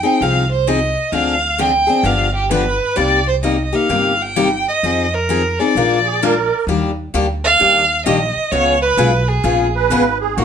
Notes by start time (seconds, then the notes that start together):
Already playing: G5
0.03 C4 D#4 G#4
0.21 C2 F3 C4 D#4 G#4 F5
0.52 C5
0.67 F3 C4 D#4 G#4 D#5
1.12 D2 D3 F3 C4 D4 G#4 F5
1.58 D3 F3 C4 D4 G#4 G5
1.87 C4 D4 G#4
2.03 G1 D3 F3 B3 D4 G4 F5
2.35 G4
2.51 D3 F3 B3 D4 G4 B4
2.96 C2 C3 G3 A#3 D#4 G4 D5
3.28 C5
3.43 C3 G3 A#3 D#4 G4 D#5
3.64 D#5
3.73 A#3 D#4 G4 F5
3.89 G1 C3 G3 A#3 D#4 G4
4.22 G5
4.36 C3 G3 A#3 D#4 G4
4.68 D#5
4.83 F2 F3 C4 D#4 G#4
5.14 A#4
5.29 F3 C4 D#4 G#4
5.59 C4 D#4 G#4 D5
5.75 A#1 F3 G#3 D4 F4 A#4
6.05 G#4
6.22 F3 G#3 D4 F4 A#4
6.67 D#2 D#3 G3 A#3 D4 G4
7.14 D2 D#3 G3 A#3 D4 G4
7.44 F5
7.60 D#2 D#3 G3 A#3 D4 G4
8.06 A#1 D#3 G3 A#3 D4 G4 D#5
8.37 muted upright bass stroke
8.51 C#2 C#3 G#3 B3 F4 G#4 C#5
8.82 B4
8.97 B1 C#3 G#3 B3 F4 G#4
9.28 G#4
9.44 A#1 C#3 G#3 B3 F4 G#4
9.76 B4
9.90 G#1 C#3 G#3 B3 F4 G#4
10.21 G#4
10.36 A#1 F#3 A#3 D#4 F#4